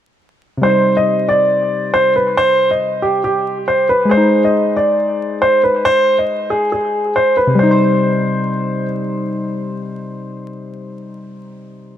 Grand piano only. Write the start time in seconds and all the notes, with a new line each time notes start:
0.63 C5
0.97 D#5
1.29 D5
1.94 C5
2.16 B4
2.37 C5
2.71 D#5
3.02 G4
3.24 G4
3.68 C5
3.89 B4
4.11 C5
4.44 D#5
4.77 D5
5.42 C5
5.63 B4
5.85 C5
6.19 D#5
6.50 G#4
6.72 G#4
7.16 C5
7.37 B4
7.59 C5